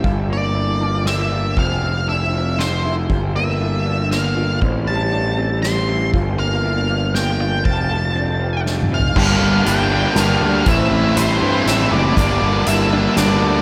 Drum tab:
CC |------------------|------------------|------------------|------------------|
RD |------x--------x--|x-----x--------x--|------x--------x--|x-----x--------x--|
HH |------------------|------------------|------------------|------------------|
SD |------------o-----|------------o-----|------------o-----|------------o-----|
T2 |------------------|------------------|------------------|------------------|
FT |------------------|------------------|------------------|------------------|
BD |o-----------------|o-----------------|o-----------------|o-----------------|

CC |------------------|------------------|x-----------------|------------------|
RD |------x-----x--x--|------x-----------|------------------|------------------|
HH |------------------|------------------|------x-----x-----|x-----x-----x-----|
SD |------------o-----|------------o-----|------------o-----|------------o-----|
T2 |------------------|--------------o---|------------------|------------------|
FT |------------------|----------------o-|------------------|------------------|
BD |o-----------------|o-----------------|o-----------------|o-----------------|

CC |------------------|
RD |------------------|
HH |x-----x-----x-----|
SD |------------o-----|
T2 |------------------|
FT |------------------|
BD |o-----------------|